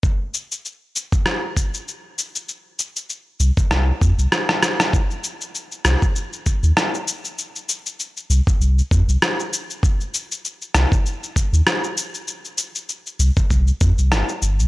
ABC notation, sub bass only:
X:1
M:4/4
L:1/16
Q:"Swing 16ths" 1/4=98
K:Cm
V:1 name="Sub bass" clef=bass
z16 | z6 C,, z C,, z F,, C,, z4 | z6 C,, z4 E,, z4 | z6 C,, z C,, z F,, C,, z4 |
z6 C,, z4 E,, z4 | z6 C,, z C,, z F,, C,, G,,, z G,,, C,, |]